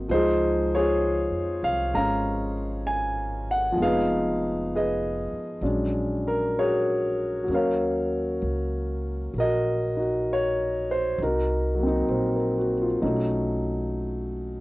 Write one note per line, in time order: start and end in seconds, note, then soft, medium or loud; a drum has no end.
0.08 1.27 C#2 medium
0.08 3.71 F3 soft
0.08 1.93 G#3 soft
0.08 0.68 C5 medium
0.13 3.78 D#4 soft
0.13 0.75 F4 soft
0.13 0.75 G#4 medium
0.75 2.53 F4 medium
0.75 2.53 G#4 medium
0.75 1.67 C#5 medium
1.31 1.60 F2 soft
1.63 1.91 C2 medium
1.63 1.94 F5 medium
1.94 3.73 G#1 medium
1.94 3.74 G#3 soft
1.94 3.78 C#4 soft
1.94 3.74 F5 medium
1.94 2.88 A#5 medium
2.87 3.49 G#5 medium
3.51 3.77 F#5 medium
3.72 5.59 F3 medium
3.72 5.61 G#3 soft
3.77 5.28 F1 medium
3.77 5.63 B3 soft
3.82 5.65 D#4 medium
3.82 4.74 G#4 soft
3.82 4.74 B4 soft
3.82 4.74 F5 medium
4.75 5.61 G#4 soft
4.75 5.61 B4 soft
4.75 5.61 D#5 medium
5.33 muted upright bass stroke soft
5.61 7.44 A#1 medium
5.61 7.42 F#3 soft
5.61 7.49 G#3 soft
5.61 7.48 C#4 soft
5.61 7.49 D4 soft
6.28 6.57 A#4 medium
6.59 7.47 F#4 soft
6.59 7.46 G#4 soft
6.59 7.53 C#5 medium
7.44 11.15 F#3 soft
7.44 11.17 A#3 soft
7.48 8.37 D#2 medium
7.48 11.19 C#4 soft
7.54 9.32 A#4 medium
7.54 9.33 C#5 medium
7.54 11.21 F5 soft
8.42 9.30 C#2 medium
9.34 11.14 A#1 medium
9.38 9.97 F#4 soft
9.38 11.16 A#4 soft
9.38 10.31 D#5 medium
9.97 11.18 D#4 soft
9.97 11.19 F#4 soft
10.33 10.87 C#5 medium
10.91 11.17 C5 medium
11.18 12.06 C2 medium
11.18 11.85 D#4 soft
11.18 12.56 F#4 soft
11.23 12.34 A#4 medium
11.75 12.99 F#3 soft
11.75 13.01 A#3 soft
11.83 13.03 C4 soft
11.83 13.00 D#4 soft
12.08 12.97 A#1 medium
12.08 12.53 C5 soft
12.36 12.74 A#4 soft
12.58 12.85 F#4 soft
12.81 13.12 F4 soft
13.02 14.61 B1 medium
13.02 14.61 F#3 soft
13.02 14.61 A3 soft
13.02 14.61 C#4 soft
13.02 14.61 D#4 medium